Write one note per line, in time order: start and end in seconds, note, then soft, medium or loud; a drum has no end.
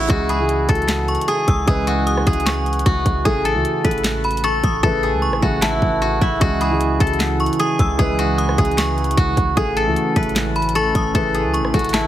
0.00 0.08 C#3 loud
0.00 0.09 E3 medium
0.00 0.12 A3 medium
0.00 0.10 E4 medium
0.00 2.51 E4 medium
0.00 0.29 G#4 medium
0.00 0.12 A4 medium
0.00 0.11 B4 loud
0.08 0.66 C#2 loud
0.08 0.28 C#3 loud
0.08 0.29 E3 medium
0.08 0.29 G#3 medium
0.08 0.29 E4 medium
0.08 1.87 F#4 loud
0.08 0.29 G#4 loud
0.08 kick loud
0.08 closed hi-hat medium
0.29 0.75 G#4 medium
0.29 0.48 B5 medium
0.29 closed hi-hat medium
0.39 0.59 C#3 medium
0.39 0.59 E3 medium
0.39 0.59 G#3 medium
0.39 0.59 E4 medium
0.39 0.60 G#4 medium
0.49 closed hi-hat medium
0.68 1.17 C#2 loud
0.68 1.20 C#3 medium
0.68 1.21 E3 medium
0.68 1.21 E4 medium
0.68 1.21 F#4 medium
0.68 1.34 A4 medium
0.68 kick medium
0.68 closed hi-hat medium
0.75 closed hi-hat medium
0.82 closed hi-hat soft
0.88 snare loud
0.88 clap loud
0.88 closed hi-hat medium
1.08 1.27 C#6 medium
1.08 closed hi-hat soft
1.15 closed hi-hat medium
1.21 closed hi-hat medium
1.28 1.67 G#4 medium
1.28 1.47 D#6 medium
1.28 closed hi-hat medium
1.48 1.67 C#2 loud
1.48 1.67 E6 medium
1.48 kick loud
1.48 closed hi-hat medium
1.66 2.24 C#2 loud
1.66 2.06 C#3 medium
1.66 2.06 E3 medium
1.66 2.06 G#3 loud
1.66 2.07 E4 medium
1.66 2.26 G#4 loud
1.66 2.07 B4 loud
1.66 kick loud
1.66 closed hi-hat medium
1.87 2.85 F#4 medium
1.87 closed hi-hat medium
2.07 2.44 D#6 medium
2.07 closed hi-hat medium
2.17 cross-stick medium
2.26 2.84 C#2 loud
2.26 2.78 C#3 medium
2.26 2.79 E3 medium
2.26 2.79 G#3 medium
2.26 2.79 E4 medium
2.26 3.25 G#4 medium
2.26 2.80 G#4 medium
2.26 kick loud
2.26 closed hi-hat medium
2.33 closed hi-hat medium
2.40 closed hi-hat soft
2.46 3.21 C#6 medium
2.46 snare loud
2.46 clap medium
2.46 closed hi-hat medium
2.66 closed hi-hat soft
2.73 closed hi-hat medium
2.79 closed hi-hat medium
2.86 3.05 C#2 loud
2.86 5.30 F#4 medium
2.86 kick loud
2.86 closed hi-hat medium
3.06 3.25 C#2 loud
3.06 kick medium
3.06 closed hi-hat medium
3.24 3.57 A1 loud
3.24 3.44 C#3 loud
3.24 3.45 E3 medium
3.24 3.45 A3 medium
3.24 3.45 E4 medium
3.24 3.51 G#4 loud
3.24 3.45 A4 loud
3.24 kick loud
3.24 closed hi-hat medium
3.45 4.43 A4 medium
3.45 3.64 A5 medium
3.45 closed hi-hat medium
3.54 3.64 C#2 loud
3.54 3.74 C#3 medium
3.54 3.75 E3 medium
3.54 3.75 A3 medium
3.54 3.75 E4 medium
3.54 3.75 F#4 medium
3.65 closed hi-hat medium
3.83 4.60 A1 loud
3.83 4.36 C#3 medium
3.83 4.36 E3 medium
3.83 4.37 A3 medium
3.83 4.37 E4 medium
3.83 4.37 A4 medium
3.83 5.89 B4 medium
3.83 kick loud
3.83 closed hi-hat medium
3.91 closed hi-hat medium
3.98 closed hi-hat soft
4.04 snare loud
4.04 clap loud
4.04 closed hi-hat medium
4.24 4.43 B5 medium
4.24 closed hi-hat soft
4.31 closed hi-hat medium
4.37 closed hi-hat medium
4.44 4.83 A4 medium
4.44 4.63 C#6 loud
4.44 closed hi-hat medium
4.64 4.82 A1 loud
4.64 4.83 D#6 medium
4.64 kick loud
4.64 closed hi-hat medium
4.83 5.15 A1 loud
4.83 5.22 C#3 loud
4.83 5.22 E3 medium
4.83 5.22 A3 medium
4.83 5.23 E4 medium
4.83 5.09 A4 loud
4.83 5.23 B4 loud
4.83 kick loud
5.03 6.61 G#4 medium
5.13 5.30 C#2 loud
5.22 5.60 C#6 medium
5.28 5.42 A1 loud
5.33 cross-stick medium
5.42 5.80 A1 loud
5.42 5.94 C#3 medium
5.42 5.94 E3 medium
5.42 5.95 A3 medium
5.42 5.95 E4 medium
5.42 6.01 F#4 medium
5.42 5.95 A4 medium
5.42 kick medium
5.62 6.21 E4 medium
5.62 6.37 A5 medium
5.62 snare loud
5.62 clap loud
5.82 6.20 A1 loud
5.82 kick loud
6.02 6.41 F#4 medium
6.21 6.40 A1 loud
6.21 8.83 E4 medium
6.21 kick medium
6.40 6.98 C#2 loud
6.40 6.60 C#3 loud
6.40 9.54 C#3 medium
6.40 6.60 E3 medium
6.40 9.54 E3 medium
6.40 6.60 G#3 medium
6.40 9.54 E4 medium
6.40 6.61 E4 medium
6.40 8.18 F#4 loud
6.40 6.61 G#4 loud
6.40 kick loud
6.40 closed hi-hat medium
6.61 7.07 G#4 medium
6.61 6.80 B5 medium
6.61 closed hi-hat medium
6.71 6.90 C#3 medium
6.71 6.91 E3 medium
6.71 6.91 G#3 medium
6.71 6.91 E4 medium
6.71 6.91 G#4 medium
6.81 closed hi-hat medium
6.99 7.48 C#2 loud
6.99 7.52 C#3 medium
6.99 7.52 E3 medium
6.99 7.53 E4 medium
6.99 7.53 F#4 medium
6.99 7.66 A4 medium
6.99 kick medium
6.99 closed hi-hat medium
7.07 closed hi-hat medium
7.13 closed hi-hat soft
7.20 snare loud
7.20 clap medium
7.20 closed hi-hat medium
7.40 7.59 C#6 medium
7.40 closed hi-hat soft
7.46 closed hi-hat medium
7.53 closed hi-hat medium
7.59 7.98 G#4 medium
7.59 7.79 D#6 medium
7.59 closed hi-hat medium
7.79 7.98 C#2 loud
7.79 7.98 E6 medium
7.79 kick medium
7.79 closed hi-hat medium
7.98 8.56 C#2 loud
7.98 8.37 C#3 loud
7.98 8.38 E3 medium
7.98 8.38 G#3 medium
7.98 8.38 E4 medium
7.98 8.58 G#4 loud
7.98 8.38 B4 loud
7.98 kick loud
7.98 closed hi-hat medium
8.19 9.17 F#4 medium
8.19 closed hi-hat medium
8.38 8.75 D#6 medium
8.38 closed hi-hat medium
8.49 cross-stick medium
8.57 9.15 C#2 loud
8.57 9.10 C#3 medium
8.57 9.10 E3 medium
8.57 9.10 G#3 medium
8.57 9.11 E4 medium
8.57 9.56 G#4 medium
8.57 9.11 G#4 medium
8.57 kick loud
8.57 closed hi-hat medium
8.65 closed hi-hat medium
8.71 closed hi-hat soft
8.78 9.53 C#6 medium
8.78 snare loud
8.78 clap loud
8.78 closed hi-hat medium
8.98 closed hi-hat soft
9.04 closed hi-hat medium
9.11 closed hi-hat medium
9.17 9.36 C#2 loud
9.17 11.61 F#4 medium
9.17 kick medium
9.17 closed hi-hat medium
9.37 9.56 C#2 loud
9.37 kick loud
9.37 closed hi-hat medium
9.56 9.89 A1 loud
9.56 9.76 C#3 medium
9.56 9.76 E3 medium
9.56 12.07 E3 medium
9.56 9.76 A3 medium
9.56 12.07 A3 medium
9.56 12.07 C#4 medium
9.56 9.77 E4 medium
9.56 9.83 G#4 loud
9.56 9.77 A4 loud
9.56 kick loud
9.56 closed hi-hat medium
9.77 10.75 A4 medium
9.77 9.95 A5 medium
9.77 closed hi-hat medium
9.86 9.96 C#2 loud
9.86 10.06 C#3 medium
9.86 10.06 E3 medium
9.86 10.06 A3 medium
9.86 10.07 E4 medium
9.86 10.07 F#4 medium
9.96 closed hi-hat medium
10.15 10.92 A1 loud
10.15 10.68 C#3 medium
10.15 10.68 E3 medium
10.15 10.68 A3 medium
10.15 10.68 E4 medium
10.15 10.69 A4 medium
10.15 12.07 B4 medium
10.15 kick medium
10.15 closed hi-hat medium
10.23 closed hi-hat medium
10.29 closed hi-hat soft
10.36 snare loud
10.36 clap loud
10.36 closed hi-hat medium
10.56 10.75 B5 medium
10.56 closed hi-hat soft
10.62 closed hi-hat medium
10.69 closed hi-hat medium
10.75 11.14 A4 medium
10.75 10.94 C#6 loud
10.75 closed hi-hat medium
10.95 11.14 A1 loud
10.95 11.14 D#6 medium
10.95 kick loud
10.95 closed hi-hat medium
11.14 11.46 A1 loud
11.14 11.53 C#3 loud
11.14 11.54 E3 medium
11.14 11.54 A3 medium
11.14 11.54 E4 medium
11.14 11.41 A4 loud
11.14 11.54 B4 loud
11.14 kick loud
11.14 closed hi-hat medium
11.35 12.07 G#4 medium
11.35 closed hi-hat medium
11.45 11.61 C#2 loud
11.54 11.91 C#6 medium
11.54 closed hi-hat medium
11.59 11.73 A1 loud
11.65 cross-stick medium
11.73 12.07 A1 loud
11.73 12.07 C#3 medium
11.73 12.07 E3 medium
11.73 12.07 A3 medium
11.73 12.07 E4 medium
11.73 12.07 F#4 medium
11.73 12.07 A4 medium
11.73 kick loud
11.73 closed hi-hat medium
11.79 closed hi-hat medium
11.84 closed hi-hat medium
11.89 closed hi-hat medium
11.94 12.07 E4 loud
11.94 12.07 A5 medium
11.94 snare loud
11.94 clap loud
11.94 closed hi-hat medium